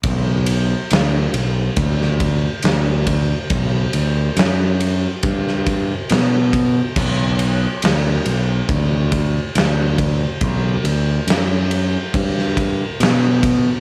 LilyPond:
<<
  \new Staff \with { instrumentName = "Fingered electric bass" } { \clef bass \time 4/4 \key b \minor \tempo 4 = 70 b,,4 d,8 b,,8 d,4 d,4 | b,,8 d,8 fis,4 g,4 b,4 | b,,4 d,8 b,,8 d,4 d,4 | b,,8 d,8 fis,4 g,4 b,4 | }
  \new DrumStaff \with { instrumentName = "Drums" } \drummode { \time 4/4 <bd cymr>8 cymr8 <cymr sn>8 cymr8 <bd cymr>16 sn16 <bd cymr>8 <cymr sn>8 <bd cymr>8 | <bd cymr>8 cymr8 <cymr sn>8 cymr8 <bd cymr>16 sn16 <bd cymr>8 <cymr sn>8 <bd cymr>8 | <cymc bd>8 cymr8 <cymr sn>8 cymr8 <bd cymr>8 <bd cymr>8 <cymr sn>8 <bd cymr>8 | <bd cymr>8 cymr8 <cymr sn>8 cymr8 <bd cymr>16 sn16 <bd cymr>8 <cymr sn>8 <bd cymr>8 | }
>>